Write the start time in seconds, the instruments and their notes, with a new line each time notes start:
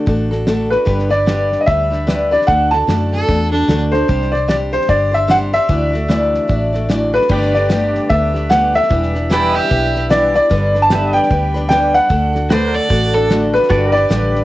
0.06 fingered electric bass A1, steel-string acoustic guitar A3 D4 F#4 A4, kick, snare
0.31 steel-string acoustic guitar D4 F#4 A4, snare
0.47 steel-string acoustic guitar D3 A3 D4 F#4 A4, snare, hi-hat pedal
0.70 steel-string acoustic guitar D4 F#4 A4, upright piano B4, snare
0.85 fingered electric bass G1, steel-string acoustic guitar G2 D3 G3 D4 G4 B4, kick, snare
0.99 snare
1.09 steel-string acoustic guitar G3 D4 G4 B4, upright piano D5, snare
1.26 steel-string acoustic guitar G2 D3 G3 D4 G4 B4, snare, hi-hat pedal
1.52 snare
1.61 upright piano D#5
1.66 fingered electric bass D2, steel-string acoustic guitar G3 D4 G4 B4, upright piano E5, kick, snare
1.90 steel-string acoustic guitar G3 D4 G4 B4, snare
2.07 steel-string acoustic guitar G2 D3 G3 D4 G4 B4, snare, hi-hat pedal
2.31 steel-string acoustic guitar G3 D4 G4 B4, upright piano D5, snare
2.42 snare
2.47 fingered electric bass D2, steel-string acoustic guitar D3 A3 D4 F#4 A4, upright piano F#5, kick, snare
2.71 steel-string acoustic guitar D4 F#4 A4, upright piano A5, snare
2.87 fingered electric bass F#2, steel-string acoustic guitar D3 A3 D4 F#4 A4, snare, hi-hat pedal
3.13 fiddle A4, snare
3.28 fingered electric bass E2, steel-string acoustic guitar A3 D4 F#4 A4, kick, snare
3.51 fiddle D4, steel-string acoustic guitar D4 F#4 A4, snare
3.68 fingered electric bass D2, steel-string acoustic guitar D3 A3 D4 F#4 A4, snare, hi-hat pedal
3.92 steel-string acoustic guitar D4 F#4 A4, upright piano C5, snare
4.08 fingered electric bass C2, steel-string acoustic guitar C3 G3 D4 G4 C5, kick, snare
4.22 snare
4.32 steel-string acoustic guitar D4 G4 C5, upright piano D5, snare
4.48 steel-string acoustic guitar C3 G3 D4 G4 C5, upright piano D5, snare, hi-hat pedal
4.73 upright piano C5, snare
4.81 snare
4.88 fingered electric bass G1, steel-string acoustic guitar G3 D4 G4 C5, upright piano D5, kick, snare
5.11 steel-string acoustic guitar D4 G4 C5, upright piano E5, snare
5.27 steel-string acoustic guitar C3 G3 D4 G4 C5, upright piano F#5, snare, hi-hat pedal
5.53 steel-string acoustic guitar D4 G4 C5, upright piano E5, snare
5.69 fingered electric bass D2, steel-string acoustic guitar D3 E3 A3 D4 F#4 D5, kick, snare
5.93 steel-string acoustic guitar A3 D4 F#4 D5, snare
6.08 steel-string acoustic guitar D3 E3 A3 D4 F#4 D5, snare, hi-hat pedal
6.35 snare
6.48 fingered electric bass A1, steel-string acoustic guitar A3 D4 F#4 D5, kick, snare
6.73 steel-string acoustic guitar A3 D4 F#4 D5, snare
6.89 steel-string acoustic guitar D3 E3 A3 D4 F#4 D5, snare, hi-hat pedal
7.13 steel-string acoustic guitar A3 D4 F#4 D5, upright piano B4, snare
7.22 snare
7.29 fingered electric bass G1, steel-string acoustic guitar G2 D3 A3 B3 D4 G4, pedal steel guitar G4 B4, kick, snare, crash
7.33 pedal steel guitar D5
7.42 snare
7.54 steel-string acoustic guitar A3 B3 D4 G4, upright piano D5, snare
7.69 steel-string acoustic guitar G2 D3 A3 B3 D4 G4, snare, hi-hat pedal
7.95 snare
8.09 fingered electric bass D2, steel-string acoustic guitar A3 B3 D4 G4, upright piano E5, kick, snare
8.34 steel-string acoustic guitar A3 B3 D4 G4, snare
8.49 steel-string acoustic guitar G2 D3 A3 B3 D4 G4, upright piano F#5, snare, hi-hat pedal
8.74 steel-string acoustic guitar A3 B3 D4 G4, upright piano E5, snare
8.83 snare
8.89 fingered electric bass E1, steel-string acoustic guitar E3 G3 B3 D4 G4, kick, snare
9.03 snare
9.13 steel-string acoustic guitar B3 D4 G4, snare
9.30 steel-string acoustic guitar E3 G3 B3 D4 G4, fiddle E4, pedal steel guitar G4, snare, hi-hat pedal
9.34 pedal steel guitar B4 D5
9.55 fiddle G4, snare
9.59 pedal steel guitar E5
9.64 snare
9.69 fingered electric bass B1, steel-string acoustic guitar G3 B3 D4 G4, kick, snare
9.94 steel-string acoustic guitar B3 D4 G4, snare
10.09 steel-string acoustic guitar E3 G3 B3 D4 G4, upright piano D5, snare, hi-hat pedal
10.34 steel-string acoustic guitar B3 D4 G4, upright piano D5, snare
10.50 fingered electric bass G1, steel-string acoustic guitar G2 D3 G3 B3 D4 B4, kick, snare
10.74 steel-string acoustic guitar G3 B3 D4 B4, snare
10.82 upright piano A5
10.90 steel-string acoustic guitar G2 D3 G3 B3 D4 B4, pedal steel guitar G4, snare, hi-hat pedal
10.95 pedal steel guitar B4 E5
11.13 upright piano G5, snare
11.19 pedal steel guitar D5, snare
11.29 fingered electric bass D2, steel-string acoustic guitar G3 B3 D4 B4, kick, snare
11.54 steel-string acoustic guitar G3 B3 D4 B4, snare
11.69 steel-string acoustic guitar G2 D3 G3 B3 D4 B4, upright piano G5, snare, hi-hat pedal
11.94 steel-string acoustic guitar G3 B3 D4 B4, upright piano F#5, snare
12.09 fingered electric bass D2, steel-string acoustic guitar D3 A3 D4 F#4 A4, kick, snare
12.33 steel-string acoustic guitar D4 F#4 A4, snare
12.50 steel-string acoustic guitar D3 A3 D4 F#4 A4, pedal steel guitar F#4 B4 D5, fiddle C5, snare, hi-hat pedal
12.74 pedal steel guitar A4, fiddle D5, snare
12.89 fingered electric bass A1, steel-string acoustic guitar A3 D4 F#4 A4, kick, snare
13.14 steel-string acoustic guitar D4 F#4 A4, fiddle A4, snare
13.30 steel-string acoustic guitar D3 A3 D4 F#4 A4, snare, hi-hat pedal
13.53 steel-string acoustic guitar D4 F#4 A4, upright piano B4, snare
13.63 snare
13.69 fingered electric bass G1, steel-string acoustic guitar G2 D3 G3 D4 G4 B4, pedal steel guitar F#4 A4 D5, kick, snare
13.90 pedal steel guitar G4, steel-string acoustic guitar B4, upright piano D5
13.94 steel-string acoustic guitar G3 D4 G4, pedal steel guitar B4, snare
14.09 fingered electric bass A1, steel-string acoustic guitar G2 D3 G3 D4 G4 B4, snare, hi-hat pedal
14.35 snare